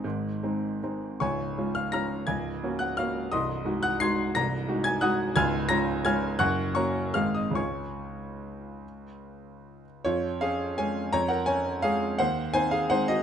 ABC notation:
X:1
M:3/4
L:1/8
Q:1/4=166
K:Db
V:1 name="Grand piano"
[ec'e']4 z2 | [dad']3 [ff'] [bf'b']2 | [aa']3 [gg'] [ff']2 | [ec'e']3 [gg'] [c'a'c'']2 |
[bb']3 [aa'] [ge'g']2 | [af'a']2 [bb']2 [af'a']2 | [gd'g']2 [dbd']2 [ff'] [ee'] | [dad']6- |
[dad']4- [dad'] z | [Fd]2 [Af]2 [da]2 | [db] [Bg] [da]2 [Af]2 | [cg]2 [ca] [Af] [cg] [Ge] |]
V:2 name="Grand piano"
[A,,,A,,]2 [A,CE]2 [A,CE]2 | [D,,,D,,]2 [A,DF]2 [A,DF]2 | [D,,,D,,]2 [B,DG]2 [B,DG]2 | [C,,,C,,]2 [A,EG]2 [A,EG]2 |
[C,,,C,,]2 [A,EG]2 [A,EG]2 | [D,,,D,,]2 [A,DF]2 [A,DF]2 | [G,,,G,,]2 [B,DG]2 [A,,,A,,A,CA]2 | [D,,A,DF]6- |
[D,,A,DF]6 | F,,2 D2 [A,D]2 | F,,2 D2 [A,D]2 | E,,2 [CE]2 [A,CE]2 |]